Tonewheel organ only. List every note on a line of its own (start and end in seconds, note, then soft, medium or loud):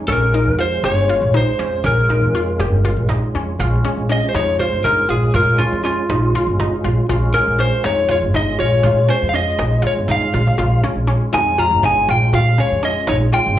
0.07 3.55 G#3 medium
0.07 3.56 C#4 medium
0.07 3.56 F4 medium
3.58 7.05 G#3 medium
3.58 7.06 C#4 medium
3.58 7.07 F4 medium
7.08 10.55 G#3 medium
7.08 10.56 C#4 medium
7.08 10.56 F4 medium
10.57 13.59 G#3 medium
10.57 13.59 C#4 medium
10.57 13.59 F4 medium